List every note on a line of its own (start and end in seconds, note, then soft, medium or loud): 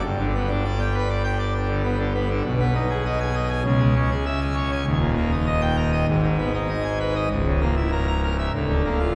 0.04 2.41 G1 medium
0.04 2.41 G2 medium
0.19 0.33 D3 medium
0.35 0.48 B3 medium
0.49 0.63 D4 medium
0.65 0.78 D5 medium
0.80 0.93 G5 medium
0.94 1.08 B4 medium
1.09 1.23 D5 medium
1.24 1.38 G5 medium
1.39 1.53 D5 medium
1.54 1.68 D4 medium
1.68 1.82 D3 medium
1.84 1.98 B3 medium
1.99 2.13 D3 medium
2.15 2.28 B3 medium
2.29 2.42 D3 medium
2.44 3.62 B1 medium
2.44 3.62 B2 medium
2.60 2.73 B3 medium
2.75 2.88 D#4 medium
2.90 3.04 G#4 medium
3.05 3.19 D#5 medium
3.21 3.34 G#5 medium
3.35 3.48 D#5 medium
3.50 3.63 G#5 medium
3.64 4.83 C#2 medium
3.64 4.83 C#3 medium
3.80 3.94 G#3 medium
3.96 4.10 C#4 medium
4.11 4.25 G#4 medium
4.26 4.40 E5 medium
4.41 4.55 G#5 medium
4.56 4.70 C#5 medium
4.72 4.85 G#5 medium
4.87 6.05 D#1 medium
4.87 6.05 D#2 medium
5.01 5.15 A#2 medium
5.17 5.31 A#3 medium
5.32 5.46 D#4 medium
5.46 5.60 D#5 medium
5.61 5.76 G5 medium
5.77 5.91 A#4 medium
5.92 6.06 D#5 medium
6.08 7.27 G#1 medium
6.08 7.27 G#2 medium
6.23 6.37 D#3 medium
6.38 6.52 B3 medium
6.54 6.68 D#4 medium
6.69 6.83 D#5 medium
6.84 6.98 G#5 medium
7.00 7.14 B4 medium
7.15 7.28 D#5 medium
7.31 8.49 C#1 medium
7.31 8.49 C#2 medium
7.47 7.60 C#3 medium
7.61 7.75 A#3 medium
7.76 7.90 E4 medium
7.92 8.06 A#4 medium
8.08 8.21 A#5 medium
8.23 8.37 A#4 medium
8.39 8.51 E5 medium
8.53 9.15 D1 medium
8.53 9.15 D2 medium
8.68 8.82 D3 medium
8.85 8.98 A#3 medium
8.99 9.13 F4 medium